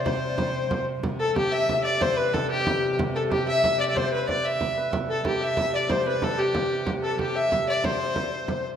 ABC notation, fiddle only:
X:1
M:6/8
L:1/16
Q:3/8=123
K:C
V:1 name="Fiddle"
c8- c2 z2 | z2 A2 G2 e4 d2 | c2 B2 A2 G6 | z2 A2 G2 e4 d/2 e/2 d |
c2 B2 d2 e6 | z2 A2 G2 e4 d2 | c2 B2 A2 G6 | z2 A2 G2 e4 d2 |
c8- c2 z2 |]